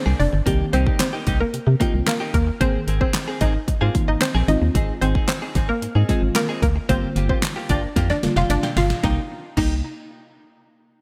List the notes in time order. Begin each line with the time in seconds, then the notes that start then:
Already playing: F3 A#3 D4 G#4
0.06 C2 A#3 D4 G#4
0.19 F1 D4 D5, muted clean electric guitar stroke, open hi-hat
0.33 G1, muted clean electric guitar stroke
0.46 C2 D#3 A#3 C4 D#4 G4, kick, closed hi-hat
0.73 C2 A#3 C4 D#4 G4 C5, closed hi-hat
0.86 A#3 D#4 G4, kick
1.00 C4 C5, muted clean electric guitar stroke, snare, clap, closed hi-hat
1.13 A#3 D#4 G4
1.26 C2 A#3 D#4 G4, kick, closed hi-hat
1.40 A#3 A#4, muted clean electric guitar stroke
1.53 C3, muted clean electric guitar stroke, closed hi-hat
1.67 C3, muted clean electric guitar stroke
1.80 D#3 A#3 C4 D#4 F4 G4, kick, closed hi-hat
1.94 C2, muted clean electric guitar stroke
2.07 A#3 A#4, snare, clap, closed hi-hat
2.20 A#3 D#4 G4
2.34 D#2 A#3 A#4, muted clean electric guitar stroke, kick, closed hi-hat
2.47 muted clean electric guitar stroke
2.61 G#1 D#3 A#3 C4 G#4 C5, kick, closed hi-hat
2.87 G#1 A#3 C4 G#4, closed hi-hat
3.01 A#3 C4 G#4 C5, kick
3.14 muted clean electric guitar stroke, snare, clap, closed hi-hat
3.28 A#3 C4 G#4
3.41 G#1 A#3 C4 D#4 G#4 D#5, kick, closed hi-hat
3.55 muted clean electric guitar stroke
3.68 G#2, muted clean electric guitar stroke, kick, closed hi-hat
3.81 G#2 A#3 C4 F4 G#4 F5
3.95 D#3 A#3 C4 D#4, muted clean electric guitar stroke, kick, closed hi-hat
4.08 G#1 D#4 D#5, muted clean electric guitar stroke
4.21 C4 C5, muted clean electric guitar stroke, snare, clap, closed hi-hat
4.35 A#1 A#3 C4 G#4
4.48 G#1 D#3 G#3 C4 D#4 F4 D#5, muted clean electric guitar stroke, closed hi-hat
4.62 D#2, muted clean electric guitar stroke
4.75 G#1 C4 D#4 G#4, kick, closed hi-hat
5.01 G#1 C4 D#4 G#4 C5, closed hi-hat
5.15 C4 D#4 G#4, kick
5.28 C4 C5, muted clean electric guitar stroke, snare, clap, closed hi-hat
5.42 C4 D#4 G#4
5.55 G#1 C4 D#4 G#4, kick, closed hi-hat
5.69 A#3 A#4, muted clean electric guitar stroke
5.82 G#2, muted clean electric guitar stroke, closed hi-hat
5.95 G#2 C4 D#4 G#4
6.09 D#3 G#3 C4 D#4 F4 G#4, kick, closed hi-hat
6.22 G#1, muted clean electric guitar stroke
6.35 A#3 A#4, muted clean electric guitar stroke, snare, clap, closed hi-hat
6.49 C4 D#4 G#4
6.62 D2 A#3 A#4, muted clean electric guitar stroke, kick, closed hi-hat
6.76 muted clean electric guitar stroke
6.89 G1 D3 G3 A#3 C4 F4 G4 C5, kick, closed hi-hat
7.16 G1 A#3 F4 G4, closed hi-hat
7.29 A#3 C4 F4 G4 C5, kick
7.42 muted clean electric guitar stroke, snare, clap, closed hi-hat
7.56 A#3 F4 G4
7.69 G1 A#3 D4 F4 G4 D5, kick, closed hi-hat
7.83 muted clean electric guitar stroke
7.96 F2 A#3 F4 G4, kick, snare, closed hi-hat
8.10 D4 D5, muted clean electric guitar stroke, snare
8.23 F1 D3 G3 A#3 F4, muted clean electric guitar stroke, snare, closed hi-hat
8.36 F1 A#3 F4 G4 F5, snare
8.50 G1 D4 D5, muted clean electric guitar stroke, snare, closed hi-hat
8.63 A#3 F4 G4, snare
8.77 G1 F4 F5, muted clean electric guitar stroke, snare, open hi-hat
8.90 muted clean electric guitar stroke, snare
9.03 C2 C3 A#3 D#4 G4, kick, snare
9.57 C2 C3 A#3 D#4 G4, kick, crash